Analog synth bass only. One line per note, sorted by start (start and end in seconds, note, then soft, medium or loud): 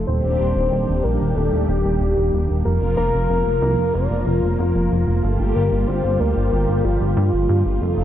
0.08 0.21 D#1 medium
0.24 0.38 D#1 medium
0.40 0.54 D#1 medium
0.56 0.70 D#1 medium
0.72 0.86 D#1 medium
0.88 1.02 D#1 medium
1.05 1.18 A#1 medium
1.21 1.34 D#1 medium
1.36 1.50 D#1 loud
1.53 1.66 D#1 medium
1.69 1.83 D#1 medium
1.85 1.99 D#1 medium
2.01 2.15 D#1 loud
2.17 2.31 D#1 medium
2.33 2.47 D#1 medium
2.49 2.63 D#1 medium
2.66 2.79 F1 loud
2.82 2.95 F1 medium
2.98 3.12 F1 medium
3.14 3.28 F1 medium
3.30 3.44 F1 loud
3.46 3.60 F1 medium
3.62 3.76 C2 loud
3.78 3.92 F1 medium
3.94 4.08 F1 loud
4.11 4.24 F1 medium
4.27 4.41 F1 medium
4.43 4.57 F1 medium
4.59 4.73 F1 loud
4.75 4.89 F1 medium
4.91 5.05 F1 medium
5.08 5.21 F1 medium
5.24 5.37 G1 loud
5.40 5.54 G1 medium
5.56 5.70 G1 medium
5.72 5.86 G1 medium
5.88 6.02 G1 medium
6.04 6.18 G1 medium
6.20 6.34 D2 medium
6.37 6.50 G1 medium
6.53 6.66 G1 loud
6.69 6.82 G1 medium
6.85 6.99 G1 medium
7.01 7.15 G1 medium
7.17 7.31 G2 loud
7.33 7.47 G1 medium
7.49 7.63 G2 medium
7.66 7.79 G1 medium
7.82 7.95 F1 loud
7.98 8.04 F1 medium